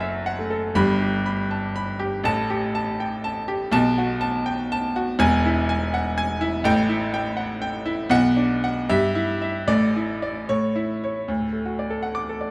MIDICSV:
0, 0, Header, 1, 2, 480
1, 0, Start_track
1, 0, Key_signature, 2, "major"
1, 0, Tempo, 499168
1, 725, Time_signature, 6, 3, 24, 8
1, 3122, Tempo, 488202
1, 7922, Tempo, 526316
1, 10802, Tempo, 499584
1, 11976, End_track
2, 0, Start_track
2, 0, Title_t, "Grand piano"
2, 0, Program_c, 0, 0
2, 0, Control_c, 0, 64, 127
2, 0, Note_on_c, 0, 30, 97
2, 0, Note_on_c, 0, 42, 109
2, 0, Note_on_c, 0, 69, 75
2, 0, Note_on_c, 0, 78, 78
2, 4, Note_on_c, 0, 76, 78
2, 153, Note_off_c, 0, 78, 0
2, 243, Note_off_c, 0, 76, 0
2, 251, Note_on_c, 0, 78, 89
2, 373, Note_on_c, 0, 57, 69
2, 484, Note_off_c, 0, 69, 0
2, 484, Note_on_c, 0, 69, 78
2, 561, Note_off_c, 0, 57, 0
2, 633, Note_off_c, 0, 78, 0
2, 686, Note_off_c, 0, 30, 0
2, 692, Note_off_c, 0, 42, 0
2, 721, Note_on_c, 0, 31, 101
2, 724, Note_on_c, 0, 83, 110
2, 726, Note_off_c, 0, 69, 0
2, 729, Note_on_c, 0, 43, 112
2, 742, Control_c, 0, 64, 0
2, 906, Control_c, 0, 64, 127
2, 973, Note_on_c, 0, 67, 68
2, 1112, Note_off_c, 0, 83, 0
2, 1210, Note_on_c, 0, 83, 81
2, 1354, Note_off_c, 0, 67, 0
2, 1450, Note_on_c, 0, 81, 73
2, 1590, Note_off_c, 0, 83, 0
2, 1686, Note_off_c, 0, 81, 0
2, 1689, Note_on_c, 0, 83, 89
2, 1918, Note_on_c, 0, 67, 91
2, 2069, Note_off_c, 0, 83, 0
2, 2122, Note_off_c, 0, 31, 0
2, 2127, Note_off_c, 0, 43, 0
2, 2150, Note_on_c, 0, 33, 107
2, 2160, Note_off_c, 0, 67, 0
2, 2165, Note_on_c, 0, 45, 107
2, 2165, Note_on_c, 0, 81, 124
2, 2181, Control_c, 0, 64, 0
2, 2365, Control_c, 0, 64, 127
2, 2404, Note_on_c, 0, 67, 81
2, 2549, Note_off_c, 0, 81, 0
2, 2643, Note_on_c, 0, 81, 96
2, 2791, Note_off_c, 0, 67, 0
2, 2887, Note_on_c, 0, 79, 80
2, 3028, Note_off_c, 0, 81, 0
2, 3117, Note_on_c, 0, 81, 95
2, 3123, Note_off_c, 0, 79, 0
2, 3351, Note_on_c, 0, 67, 88
2, 3503, Note_off_c, 0, 81, 0
2, 3557, Note_off_c, 0, 33, 0
2, 3565, Note_off_c, 0, 45, 0
2, 3582, Note_on_c, 0, 35, 115
2, 3592, Note_on_c, 0, 81, 126
2, 3596, Note_on_c, 0, 47, 120
2, 3598, Note_off_c, 0, 67, 0
2, 3619, Control_c, 0, 64, 0
2, 3760, Control_c, 0, 64, 127
2, 3843, Note_on_c, 0, 66, 88
2, 3981, Note_off_c, 0, 81, 0
2, 4067, Note_on_c, 0, 81, 103
2, 4226, Note_off_c, 0, 66, 0
2, 4314, Note_on_c, 0, 79, 92
2, 4457, Note_off_c, 0, 81, 0
2, 4557, Note_off_c, 0, 79, 0
2, 4569, Note_on_c, 0, 81, 107
2, 4806, Note_on_c, 0, 66, 95
2, 4948, Note_off_c, 0, 81, 0
2, 4990, Note_off_c, 0, 35, 0
2, 4996, Note_off_c, 0, 47, 0
2, 5031, Note_on_c, 0, 28, 126
2, 5039, Note_on_c, 0, 40, 122
2, 5039, Note_on_c, 0, 80, 127
2, 5043, Note_off_c, 0, 66, 0
2, 5055, Control_c, 0, 64, 0
2, 5247, Control_c, 0, 64, 127
2, 5292, Note_on_c, 0, 64, 91
2, 5424, Note_off_c, 0, 80, 0
2, 5526, Note_on_c, 0, 80, 100
2, 5671, Note_off_c, 0, 64, 0
2, 5768, Note_on_c, 0, 78, 94
2, 5908, Note_off_c, 0, 80, 0
2, 6003, Note_on_c, 0, 80, 107
2, 6004, Note_off_c, 0, 78, 0
2, 6231, Note_on_c, 0, 64, 96
2, 6382, Note_off_c, 0, 80, 0
2, 6432, Note_off_c, 0, 28, 0
2, 6436, Note_off_c, 0, 40, 0
2, 6460, Note_on_c, 0, 33, 120
2, 6467, Note_on_c, 0, 45, 117
2, 6470, Note_on_c, 0, 79, 127
2, 6472, Note_off_c, 0, 64, 0
2, 6490, Control_c, 0, 64, 0
2, 6657, Control_c, 0, 64, 127
2, 6704, Note_on_c, 0, 64, 87
2, 6855, Note_off_c, 0, 79, 0
2, 6948, Note_on_c, 0, 79, 101
2, 7093, Note_off_c, 0, 64, 0
2, 7173, Note_on_c, 0, 78, 85
2, 7337, Note_off_c, 0, 79, 0
2, 7418, Note_on_c, 0, 79, 94
2, 7425, Note_off_c, 0, 78, 0
2, 7653, Note_on_c, 0, 64, 91
2, 7815, Note_off_c, 0, 79, 0
2, 7875, Note_off_c, 0, 33, 0
2, 7879, Note_off_c, 0, 45, 0
2, 7889, Note_on_c, 0, 35, 116
2, 7900, Note_on_c, 0, 47, 108
2, 7901, Note_on_c, 0, 78, 127
2, 7910, Note_off_c, 0, 64, 0
2, 7938, Control_c, 0, 64, 0
2, 8093, Control_c, 0, 64, 127
2, 8139, Note_on_c, 0, 62, 81
2, 8283, Note_off_c, 0, 78, 0
2, 8386, Note_on_c, 0, 78, 93
2, 8522, Note_off_c, 0, 62, 0
2, 8587, Note_off_c, 0, 35, 0
2, 8592, Note_off_c, 0, 47, 0
2, 8620, Note_on_c, 0, 76, 112
2, 8622, Note_on_c, 0, 43, 113
2, 8623, Note_off_c, 0, 78, 0
2, 8644, Control_c, 0, 64, 0
2, 8816, Control_c, 0, 64, 127
2, 8855, Note_on_c, 0, 64, 91
2, 9003, Note_off_c, 0, 76, 0
2, 9097, Note_on_c, 0, 76, 75
2, 9243, Note_off_c, 0, 64, 0
2, 9322, Note_off_c, 0, 43, 0
2, 9331, Note_on_c, 0, 33, 101
2, 9334, Note_on_c, 0, 45, 102
2, 9334, Note_on_c, 0, 74, 108
2, 9342, Note_off_c, 0, 76, 0
2, 9361, Control_c, 0, 64, 0
2, 9551, Control_c, 0, 64, 127
2, 9593, Note_on_c, 0, 64, 74
2, 9732, Note_off_c, 0, 74, 0
2, 9833, Note_on_c, 0, 74, 77
2, 9985, Note_off_c, 0, 64, 0
2, 10053, Note_off_c, 0, 33, 0
2, 10054, Note_off_c, 0, 45, 0
2, 10076, Note_on_c, 0, 73, 102
2, 10077, Note_on_c, 0, 45, 90
2, 10080, Note_off_c, 0, 74, 0
2, 10099, Control_c, 0, 64, 0
2, 10262, Control_c, 0, 64, 127
2, 10318, Note_on_c, 0, 64, 75
2, 10466, Note_off_c, 0, 73, 0
2, 10574, Note_on_c, 0, 73, 76
2, 10705, Note_off_c, 0, 64, 0
2, 10778, Note_off_c, 0, 45, 0
2, 10797, Note_on_c, 0, 38, 87
2, 10806, Note_off_c, 0, 73, 0
2, 10821, Control_c, 0, 64, 0
2, 10914, Note_on_c, 0, 45, 65
2, 10955, Control_c, 0, 64, 127
2, 11034, Note_on_c, 0, 57, 60
2, 11112, Note_off_c, 0, 45, 0
2, 11156, Note_on_c, 0, 66, 62
2, 11232, Note_off_c, 0, 57, 0
2, 11285, Note_on_c, 0, 74, 66
2, 11353, Note_off_c, 0, 66, 0
2, 11395, Note_on_c, 0, 69, 73
2, 11477, Note_off_c, 0, 74, 0
2, 11512, Note_on_c, 0, 78, 75
2, 11591, Note_off_c, 0, 69, 0
2, 11630, Note_on_c, 0, 86, 85
2, 11708, Note_off_c, 0, 78, 0
2, 11770, Note_on_c, 0, 69, 67
2, 11827, Note_off_c, 0, 86, 0
2, 11881, Note_on_c, 0, 74, 62
2, 11957, Note_off_c, 0, 69, 0
2, 11976, Note_off_c, 0, 38, 0
2, 11976, Note_off_c, 0, 74, 0
2, 11976, End_track
0, 0, End_of_file